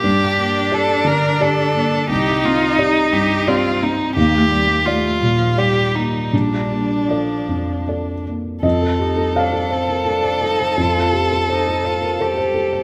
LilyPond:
<<
  \new Staff \with { instrumentName = "Felt piano" } { \time 3/4 \key f \mixolydian \tempo 4 = 86 << { r2. | r2. | r2. | r2. |
ees''4 f''2 | c''2 c''4 | } \\ { g,8 bes8 <g' d''>8 d8 <g' d''>8 bes8 | c,8 c'8 <g' d''>8 g,8 <g' d''>8 c'8 | ees,8 bes8 <g' d''>8 bes,8 <g' d''>8 bes8 | bes,,8 bes8 <a' d''>8 f,8 <a' d''>8 bes8 |
f,16 a'16 g'16 a'16 c''16 a'16 c''16 bes'16 a'16 c''16 a'16 c''16 | f,16 a'16 g'16 a'16 c''8 c''16 bes'16 a'16 c''16 a'16 c''16 | } >> }
  \new Staff \with { instrumentName = "Violin" } { \time 3/4 \key f \mixolydian g'4 a'8 bes'8 a'4 | g'8 f'8 ees'8 g'8 f'8 ees'8 | g'4 f'4 g'8 ees'8 | d'2~ d'8 r8 |
a'2.~ | a'2. | }
  \new Staff \with { instrumentName = "Cello" } { \time 3/4 \key f \mixolydian d'2. | ees'2 c'8 r8 | bes16 a16 g16 bes16 a8 g16 f16 g4 | g4 f4 r4 |
c'8 ees'8 d'8 c'8 d'8 ees'8 | f'4 ees'8 f'8 g'4 | }
>>